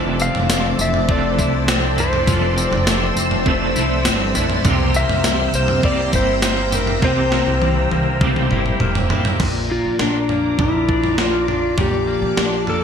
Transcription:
Already playing: upright bass F1, clean electric guitar F2 C3 E3 F3 A3 C4 E4 A4, string machine C5 D5 A5 E6
0.20 clean electric guitar C4, electric slide guitar F5, tambourine
0.34 upright bass F1, floor tom
0.49 clean electric guitar A3, snare, tambourine
0.79 upright bass F1, clean electric guitar C4, electric slide guitar E5, tambourine
0.94 floor tom
1.08 clean electric guitar F2 C3 E3 A3 C4 A4, electric slide guitar D5, kick
1.39 upright bass C2, clean electric guitar E4, kick, tambourine
1.68 clean electric guitar C4, snare, tambourine
1.96 clean electric guitar C4 E4 A4, floor tom, tambourine
2.00 clean electric guitar E3 A3, electric slide guitar C5
2.13 floor tom
2.25 upright bass F1, clean electric guitar F2 C3 E3 F3, kick, floor tom, tambourine
2.30 clean electric guitar A3 C4 A4
2.57 clean electric guitar C4, tambourine
2.72 upright bass F1, floor tom
2.87 clean electric guitar A3, snare, tambourine
3.16 upright bass F1, clean electric guitar C4, tambourine
3.31 floor tom
3.45 clean electric guitar F2 C3 E3 A3 C4 A4, kick
3.74 upright bass C2, clean electric guitar A3 C4 E4 A4, tambourine
3.80 clean electric guitar E3
4.05 upright bass G1, clean electric guitar C4, snare, tambourine
4.34 upright bass A#1, clean electric guitar A3 C4 E4 A4, floor tom, tambourine
4.39 clean electric guitar E3
4.50 floor tom
4.62 upright bass C2, clean electric guitar C3 E3, string machine G5 A#5, kick, floor tom, tambourine
4.67 clean electric guitar A#3 C4 G4
4.94 clean electric guitar A#3, electric slide guitar E5, tambourine
5.09 upright bass C2, floor tom
5.24 clean electric guitar G3, snare, tambourine
5.54 upright bass C2, clean electric guitar A#3, electric slide guitar C5, tambourine
5.68 floor tom
5.82 clean electric guitar C3 E3 G3 A#3 C4, electric slide guitar D5, kick
5.86 clean electric guitar G4
6.13 upright bass G1, clean electric guitar E4, electric slide guitar C5, kick, tambourine
6.42 clean electric guitar A#3, electric slide guitar C5, snare, tambourine
6.71 clean electric guitar C4 E4 G4, electric slide guitar A#4, floor tom, tambourine
6.76 clean electric guitar A#3
6.87 floor tom
6.99 upright bass C2, clean electric guitar C3 E3, kick, snare
7.04 clean electric guitar A#3 C4 G4, electric slide guitar C5
7.32 clean electric guitar A#3, snare
7.47 upright bass C2
7.62 clean electric guitar G3, high tom
7.91 upright bass C2, clean electric guitar A#3, high tom
8.20 clean electric guitar C3 E3 G3 A#3 C4 G4, kick, mid tom
8.36 mid tom
8.50 upright bass G1, clean electric guitar C4 E4 G4, mid tom
8.55 clean electric guitar A#3
8.66 mid tom
8.80 upright bass E1, clean electric guitar A#3, mid tom
8.95 floor tom
9.09 upright bass A1, clean electric guitar C4 E4 G4, floor tom
9.14 clean electric guitar A#3
9.25 floor tom
9.40 upright bass A#1, clean electric guitar A#2, string machine F3 D5 A#5 D6, kick, floor tom, crash
9.70 clean electric guitar A#3, electric slide guitar F4
9.85 upright bass A#1
9.99 upright bass A#1, clean electric guitar D4, electric slide guitar D4, snare
10.29 clean electric guitar A#3, floor tom
10.59 upright bass A#1, clean electric guitar F3, electric slide guitar E4, kick, floor tom
10.88 clean electric guitar D4, kick
11.04 floor tom
11.18 clean electric guitar A#3, electric slide guitar F4, snare
11.48 clean electric guitar D4, electric slide guitar F4, floor tom
11.77 upright bass A#1, clean electric guitar A#2, electric slide guitar G4, string machine A5, kick, floor tom
12.07 clean electric guitar A#3
12.22 upright bass A#1
12.37 upright bass A#1, clean electric guitar D4, snare
12.67 clean electric guitar A#3, electric slide guitar A4, floor tom

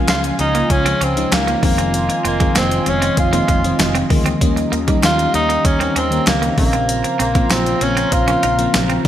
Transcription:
Already playing: fm electric piano C#3 F3 G#3 A#3 C#4, analog synth pad F4 F5 G#5
0.08 fretless electric bass C#2, clean electric guitar G#3, tenor saxophone F4, snare, clap, closed hi-hat, tambourine
0.24 closed hi-hat
0.38 fretless electric bass C#2, fm electric piano C#3 F3 G#3 C#4, tenor saxophone D#4, muted clean electric guitar stroke, closed hi-hat
0.55 clean electric guitar A#3, closed hi-hat
0.70 fretless electric bass C#2, tenor saxophone C#4, muted clean electric guitar stroke, kick, closed hi-hat
0.84 fm electric piano C#3 F3 G#3 C#4, clean electric guitar C4, closed hi-hat
1.01 fretless electric bass C#2, tenor saxophone C4, clean electric guitar C#4, closed hi-hat
1.16 fm electric piano C#3 F3 G#3 D#4, closed hi-hat
1.32 fretless electric bass C#2, tenor saxophone A#3, snare, clap, closed hi-hat, tambourine
1.47 clean electric guitar A#3, closed hi-hat
1.62 fretless electric bass F1, fm electric piano D#3 F3 G#3 C4, tenor saxophone A#3, analog synth pad F4 D#5 G#5 C6, muted clean electric guitar stroke, kick, open hi-hat
1.78 clean electric guitar C4, closed hi-hat
1.94 closed hi-hat
2.09 muted clean electric guitar stroke, closed hi-hat
2.25 fretless electric bass F1, tenor saxophone A#3, clean electric guitar C4, closed hi-hat
2.39 fm electric piano D#3 F3 G#3 C4, clean electric guitar G#3, kick, closed hi-hat
2.55 fretless electric bass F1, clean electric guitar A#3, tenor saxophone C4, snare, clap, closed hi-hat, tambourine
2.71 closed hi-hat
2.85 fretless electric bass F1, fm electric piano D#3 F3 G#3 C4, tenor saxophone C#4, muted clean electric guitar stroke, closed hi-hat
3.02 clean electric guitar C4, closed hi-hat
3.17 fretless electric bass F1, tenor saxophone F4, muted clean electric guitar stroke, kick, closed hi-hat
3.32 fm electric piano D#3 F3 G#3 C4, clean electric guitar A#3, closed hi-hat
3.48 fretless electric bass F1, clean electric guitar G#3, kick, closed hi-hat
3.63 fm electric piano D#3 F3 G#3 C4, closed hi-hat
3.79 fretless electric bass F1, snare, clap, closed hi-hat, tambourine
3.95 clean electric guitar C4, closed hi-hat
4.10 fretless electric bass D2, fm electric piano D#3 F3 G#3 A#3, muted clean electric guitar stroke, kick, open hi-hat
4.26 clean electric guitar C4, closed hi-hat
4.40 fretless electric bass D#2, fm electric piano D#3 G3 A#3 C#4, analog synth pad G4 A#5, kick, closed hi-hat
4.56 muted clean electric guitar stroke, closed hi-hat
4.72 fretless electric bass D#2, clean electric guitar A#3, closed hi-hat
4.87 fm electric piano D#3 G3 A#3 D#4, clean electric guitar G3, kick, closed hi-hat
5.03 fretless electric bass D#2, clean electric guitar G3, tenor saxophone F4, snare, clap, closed hi-hat, tambourine
5.19 closed hi-hat
5.33 fretless electric bass D#2, fm electric piano D#3 G3 A#3 C#4, tenor saxophone D#4, muted clean electric guitar stroke, closed hi-hat
5.49 clean electric guitar A#3, closed hi-hat
5.65 fretless electric bass D#2, tenor saxophone C#4, muted clean electric guitar stroke, kick, closed hi-hat
5.79 fm electric piano D#3 G3 A#3 C4, clean electric guitar C4, closed hi-hat
5.96 fretless electric bass D#2, tenor saxophone C4, clean electric guitar C#4, closed hi-hat
6.10 fm electric piano D#3 G3 A#3 C#4, closed hi-hat
6.27 fretless electric bass C#2, tenor saxophone A#3, snare, clap, closed hi-hat, tambourine
6.42 clean electric guitar A#3, closed hi-hat
6.57 fretless electric bass A#1, fm electric piano C#3 F3 A#3 C4, tenor saxophone A#3, analog synth pad F4 C5, muted clean electric guitar stroke, kick, open hi-hat
6.73 clean electric guitar C4, closed hi-hat
6.89 closed hi-hat
7.04 muted clean electric guitar stroke, closed hi-hat
7.19 fretless electric bass A#1, tenor saxophone A#3, clean electric guitar C4, closed hi-hat
7.34 fm electric piano C#3 F3 A#3 C4, clean electric guitar A#3, kick, closed hi-hat
7.50 fretless electric bass A#1, clean electric guitar A#3, tenor saxophone C4, snare, clap, closed hi-hat, tambourine
7.66 closed hi-hat
7.81 fretless electric bass A#1, fm electric piano C#3 F3 A#3 C4, tenor saxophone C#4, muted clean electric guitar stroke, closed hi-hat
7.97 clean electric guitar C4, closed hi-hat
8.12 fretless electric bass A#1, tenor saxophone F4, muted clean electric guitar stroke, kick, closed hi-hat
8.27 fm electric piano C#3 F3 A#3 C4, clean electric guitar C#4, closed hi-hat
8.43 fretless electric bass A#1, clean electric guitar D#4, closed hi-hat
8.58 fm electric piano C#3 F3 A#3 C4, closed hi-hat
8.74 fretless electric bass A#1, snare, clap, closed hi-hat, tambourine
8.90 clean electric guitar C4, closed hi-hat
9.04 fm electric piano C#3 F3, analog synth pad F4 C#5 G#5 C#6

